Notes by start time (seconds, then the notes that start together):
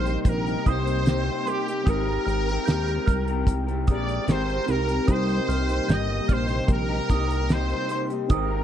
Already playing: A#1 C3 G3 A#3 C4 D#4 G4 A#4 C5
0.05 A#3 D#4 G4, closed hi-hat
0.21 C5
0.25 A#1 A#4, kick, closed hi-hat
0.46 A#3 D#4 G4, closed hi-hat
0.65 C2 C3 A#3 D#4 G4 C5 D#6, kick, closed hi-hat
0.87 closed hi-hat
1.06 C3 A#3 D#4 G4, snare, closed hi-hat
1.46 C3 A#3 G4 C6, closed hi-hat
1.50 D#4 G4
1.67 D#4 G4, closed hi-hat
1.71 A#3
1.84 G#1 G#3 C4 D#4 G4 D#6, kick, closed hi-hat
1.88 G#3 C4 G4 A#4
2.08 C4 G4 A#4
2.25 G#1 F6, closed hi-hat
2.48 C4 G4 A#4, closed hi-hat
2.65 D#2 G#3 C4 G4 G6, snare, closed hi-hat
2.70 A#4
2.88 closed hi-hat
3.06 C2 F6, kick, closed hi-hat
3.27 C4 G4 A#4, closed hi-hat
3.47 kick, closed hi-hat
3.67 C4 G4 A#4, closed hi-hat
3.87 A#1 G#3 C4 G4 A#4 D5 D#6, kick, closed hi-hat
4.09 closed hi-hat
4.27 G#1 G#3 C4 G4 A#4, snare, closed hi-hat
4.31 C5
4.50 closed hi-hat
4.66 C2 G#3 C4 D#4 G4 A#4, closed hi-hat
4.71 G4 A#4
4.87 C4 G4 A#4, closed hi-hat
5.06 C2 C3 G3 A#3 C4 D#4 G4 D#6, kick, closed hi-hat
5.10 A#3 A#4 C5
5.29 closed hi-hat
5.49 C2 F6, closed hi-hat
5.68 A#3 D#4 G4, closed hi-hat
5.87 G1 C3 A#3 D#4 G4 G6, snare, closed hi-hat
5.91 D#5
6.28 A#1 C5 F6, kick, closed hi-hat
6.48 A#3 D#4 G4, closed hi-hat
6.68 A#1, kick, closed hi-hat
6.72 A#4
6.90 D#4 G4
6.94 A#3
7.09 C2 C3 A#3 D#4 G4 D#6, kick, closed hi-hat
7.31 closed hi-hat
7.49 C3 A#3 D#4 C5, snare, closed hi-hat
7.53 G4
7.70 closed hi-hat
7.89 C3 A#3 D#4 G4 C6, closed hi-hat
8.10 A#3 D#4 G4, closed hi-hat
8.29 G#1 G#3 C4 D#4 G4 A#4 D#6, kick, closed hi-hat
8.33 G#3 C4 G4 A#4